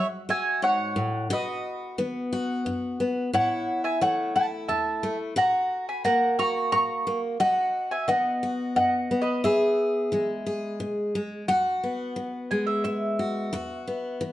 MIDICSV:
0, 0, Header, 1, 3, 480
1, 0, Start_track
1, 0, Key_signature, 4, "major"
1, 0, Tempo, 679502
1, 916, Time_signature, 3, 2, 24, 8
1, 10117, End_track
2, 0, Start_track
2, 0, Title_t, "Mandolin"
2, 0, Program_c, 0, 25
2, 210, Note_on_c, 0, 76, 89
2, 214, Note_on_c, 0, 80, 107
2, 427, Note_off_c, 0, 76, 0
2, 445, Note_on_c, 0, 73, 77
2, 447, Note_off_c, 0, 80, 0
2, 450, Note_on_c, 0, 78, 102
2, 892, Note_off_c, 0, 73, 0
2, 936, Note_on_c, 0, 71, 59
2, 937, Note_off_c, 0, 78, 0
2, 939, Note_on_c, 0, 75, 79
2, 1377, Note_off_c, 0, 75, 0
2, 1378, Note_off_c, 0, 71, 0
2, 2359, Note_on_c, 0, 73, 70
2, 2363, Note_on_c, 0, 78, 103
2, 2691, Note_off_c, 0, 73, 0
2, 2713, Note_on_c, 0, 76, 68
2, 2715, Note_off_c, 0, 78, 0
2, 2718, Note_on_c, 0, 80, 88
2, 2825, Note_off_c, 0, 76, 0
2, 2827, Note_off_c, 0, 80, 0
2, 2836, Note_on_c, 0, 73, 66
2, 2840, Note_on_c, 0, 78, 87
2, 3058, Note_off_c, 0, 73, 0
2, 3071, Note_off_c, 0, 78, 0
2, 3077, Note_on_c, 0, 78, 90
2, 3082, Note_on_c, 0, 81, 78
2, 3143, Note_off_c, 0, 78, 0
2, 3144, Note_off_c, 0, 81, 0
2, 3308, Note_on_c, 0, 76, 81
2, 3310, Note_on_c, 0, 81, 92
2, 3644, Note_off_c, 0, 81, 0
2, 3645, Note_off_c, 0, 76, 0
2, 3797, Note_on_c, 0, 78, 91
2, 3801, Note_on_c, 0, 82, 84
2, 4130, Note_off_c, 0, 78, 0
2, 4157, Note_off_c, 0, 82, 0
2, 4159, Note_on_c, 0, 80, 70
2, 4160, Note_on_c, 0, 83, 75
2, 4267, Note_off_c, 0, 80, 0
2, 4270, Note_off_c, 0, 83, 0
2, 4272, Note_on_c, 0, 78, 74
2, 4273, Note_on_c, 0, 82, 89
2, 4495, Note_off_c, 0, 78, 0
2, 4509, Note_off_c, 0, 82, 0
2, 4512, Note_on_c, 0, 85, 110
2, 4518, Note_on_c, 0, 82, 91
2, 4738, Note_off_c, 0, 82, 0
2, 4739, Note_off_c, 0, 85, 0
2, 4747, Note_on_c, 0, 82, 81
2, 4749, Note_on_c, 0, 85, 92
2, 5083, Note_off_c, 0, 85, 0
2, 5084, Note_off_c, 0, 82, 0
2, 5227, Note_on_c, 0, 78, 99
2, 5230, Note_on_c, 0, 75, 73
2, 5565, Note_off_c, 0, 75, 0
2, 5587, Note_off_c, 0, 78, 0
2, 5590, Note_on_c, 0, 80, 93
2, 5594, Note_on_c, 0, 76, 64
2, 5704, Note_off_c, 0, 76, 0
2, 5706, Note_off_c, 0, 80, 0
2, 5708, Note_on_c, 0, 75, 80
2, 5709, Note_on_c, 0, 78, 80
2, 6160, Note_off_c, 0, 78, 0
2, 6161, Note_off_c, 0, 75, 0
2, 6189, Note_on_c, 0, 78, 87
2, 6194, Note_on_c, 0, 75, 71
2, 6489, Note_off_c, 0, 75, 0
2, 6507, Note_off_c, 0, 78, 0
2, 6509, Note_on_c, 0, 75, 88
2, 6513, Note_on_c, 0, 71, 69
2, 6660, Note_off_c, 0, 71, 0
2, 6667, Note_off_c, 0, 75, 0
2, 6670, Note_on_c, 0, 76, 77
2, 6676, Note_on_c, 0, 71, 62
2, 7602, Note_off_c, 0, 76, 0
2, 7605, Note_off_c, 0, 71, 0
2, 8111, Note_on_c, 0, 78, 91
2, 8810, Note_off_c, 0, 78, 0
2, 8835, Note_on_c, 0, 80, 78
2, 8945, Note_off_c, 0, 80, 0
2, 8947, Note_on_c, 0, 76, 75
2, 9061, Note_off_c, 0, 76, 0
2, 9070, Note_on_c, 0, 76, 90
2, 10005, Note_off_c, 0, 76, 0
2, 10117, End_track
3, 0, Start_track
3, 0, Title_t, "Steel-string acoustic guitar"
3, 0, Program_c, 1, 25
3, 0, Note_on_c, 1, 54, 70
3, 0, Note_on_c, 1, 66, 80
3, 200, Note_off_c, 1, 66, 0
3, 203, Note_on_c, 1, 66, 72
3, 390, Note_off_c, 1, 54, 0
3, 440, Note_on_c, 1, 44, 71
3, 678, Note_off_c, 1, 44, 0
3, 678, Note_on_c, 1, 45, 66
3, 890, Note_off_c, 1, 66, 0
3, 917, Note_off_c, 1, 45, 0
3, 919, Note_on_c, 1, 47, 89
3, 924, Note_on_c, 1, 66, 84
3, 1349, Note_off_c, 1, 47, 0
3, 1400, Note_on_c, 1, 51, 65
3, 1403, Note_on_c, 1, 59, 58
3, 1634, Note_off_c, 1, 66, 0
3, 1643, Note_on_c, 1, 66, 75
3, 1829, Note_off_c, 1, 51, 0
3, 1879, Note_on_c, 1, 42, 68
3, 2111, Note_off_c, 1, 59, 0
3, 2120, Note_on_c, 1, 59, 59
3, 2308, Note_off_c, 1, 42, 0
3, 2328, Note_off_c, 1, 59, 0
3, 2329, Note_off_c, 1, 66, 0
3, 2356, Note_on_c, 1, 45, 88
3, 2362, Note_on_c, 1, 64, 77
3, 2786, Note_off_c, 1, 45, 0
3, 2836, Note_on_c, 1, 52, 70
3, 2841, Note_on_c, 1, 57, 63
3, 3069, Note_off_c, 1, 64, 0
3, 3077, Note_on_c, 1, 64, 66
3, 3266, Note_off_c, 1, 52, 0
3, 3312, Note_on_c, 1, 40, 67
3, 3546, Note_off_c, 1, 57, 0
3, 3554, Note_on_c, 1, 57, 66
3, 3744, Note_off_c, 1, 40, 0
3, 3764, Note_off_c, 1, 57, 0
3, 3787, Note_on_c, 1, 46, 92
3, 3789, Note_off_c, 1, 64, 0
3, 3792, Note_on_c, 1, 66, 79
3, 4221, Note_off_c, 1, 46, 0
3, 4270, Note_on_c, 1, 54, 66
3, 4276, Note_on_c, 1, 58, 67
3, 4512, Note_off_c, 1, 66, 0
3, 4515, Note_on_c, 1, 66, 74
3, 4702, Note_off_c, 1, 54, 0
3, 4749, Note_on_c, 1, 46, 66
3, 4984, Note_off_c, 1, 58, 0
3, 4993, Note_on_c, 1, 58, 64
3, 5182, Note_off_c, 1, 46, 0
3, 5203, Note_off_c, 1, 58, 0
3, 5204, Note_off_c, 1, 66, 0
3, 5227, Note_on_c, 1, 47, 84
3, 5231, Note_on_c, 1, 66, 78
3, 5660, Note_off_c, 1, 47, 0
3, 5706, Note_on_c, 1, 51, 66
3, 5712, Note_on_c, 1, 59, 63
3, 5946, Note_off_c, 1, 66, 0
3, 5954, Note_on_c, 1, 66, 68
3, 6140, Note_off_c, 1, 51, 0
3, 6189, Note_on_c, 1, 42, 77
3, 6432, Note_off_c, 1, 59, 0
3, 6435, Note_on_c, 1, 59, 60
3, 6621, Note_off_c, 1, 42, 0
3, 6643, Note_off_c, 1, 66, 0
3, 6667, Note_on_c, 1, 40, 83
3, 6674, Note_on_c, 1, 68, 81
3, 7101, Note_off_c, 1, 40, 0
3, 7148, Note_on_c, 1, 52, 60
3, 7151, Note_off_c, 1, 59, 0
3, 7154, Note_on_c, 1, 56, 62
3, 7384, Note_off_c, 1, 68, 0
3, 7392, Note_on_c, 1, 68, 69
3, 7581, Note_off_c, 1, 52, 0
3, 7629, Note_on_c, 1, 47, 64
3, 7869, Note_off_c, 1, 56, 0
3, 7877, Note_on_c, 1, 56, 63
3, 8062, Note_off_c, 1, 47, 0
3, 8083, Note_off_c, 1, 68, 0
3, 8085, Note_off_c, 1, 56, 0
3, 8112, Note_on_c, 1, 40, 84
3, 8115, Note_on_c, 1, 66, 72
3, 8360, Note_on_c, 1, 59, 52
3, 8544, Note_off_c, 1, 40, 0
3, 8590, Note_on_c, 1, 52, 64
3, 8839, Note_on_c, 1, 56, 55
3, 9023, Note_off_c, 1, 52, 0
3, 9074, Note_on_c, 1, 47, 57
3, 9316, Note_off_c, 1, 66, 0
3, 9319, Note_on_c, 1, 66, 61
3, 9506, Note_off_c, 1, 47, 0
3, 9528, Note_off_c, 1, 56, 0
3, 9555, Note_on_c, 1, 40, 80
3, 9557, Note_off_c, 1, 66, 0
3, 9560, Note_on_c, 1, 66, 75
3, 9798, Note_off_c, 1, 59, 0
3, 9801, Note_on_c, 1, 59, 58
3, 9987, Note_off_c, 1, 40, 0
3, 10036, Note_on_c, 1, 52, 65
3, 10117, Note_off_c, 1, 52, 0
3, 10117, Note_off_c, 1, 59, 0
3, 10117, Note_off_c, 1, 66, 0
3, 10117, End_track
0, 0, End_of_file